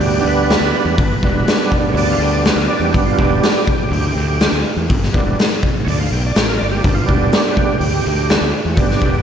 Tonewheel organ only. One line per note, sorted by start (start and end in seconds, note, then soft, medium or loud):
0.00 0.95 G3 soft
0.00 0.95 B3 soft
0.00 0.96 D4 medium
0.00 0.25 G4 medium
0.27 1.69 B4 loud
1.24 2.92 G3 medium
1.24 2.93 B3 soft
1.24 2.95 D4 medium
1.93 1.96 C#5 medium
1.98 2.09 D5 medium
2.11 2.21 F5 medium
2.20 2.32 G5 medium
2.32 2.44 D5 medium
2.45 2.57 G4 medium
2.56 2.68 A#4 medium
2.70 2.82 D5 medium
2.83 2.94 G4 medium
2.94 3.64 G3 medium
2.94 3.64 B3 soft
2.94 3.65 D4 medium
3.06 3.18 F4 medium
3.18 4.60 G4 medium
5.13 5.46 G3 medium
5.13 5.46 B3 soft
5.13 5.46 D4 medium
5.85 5.88 C#5 medium
5.89 5.99 D5 loud
6.00 6.11 F5 medium
6.12 6.23 G5 medium
6.26 6.36 D5 medium
6.37 6.47 G4 medium
6.49 6.59 A#4 medium
6.59 6.70 D5 medium
6.71 6.83 G4 medium
6.83 6.95 D4 medium
6.94 7.06 F4 medium
7.05 7.76 G3 medium
7.05 7.76 B3 soft
7.05 7.77 D4 medium
7.05 8.49 G4 medium
8.29 8.51 G3 medium
8.29 8.52 B3 soft
8.29 8.51 D4 medium
8.74 9.09 G3 medium
8.74 9.00 B3 medium
8.74 9.10 D4 medium
8.74 8.77 F#4 medium
8.79 9.01 G4 medium
9.01 9.22 B3 medium
9.01 9.22 G4 medium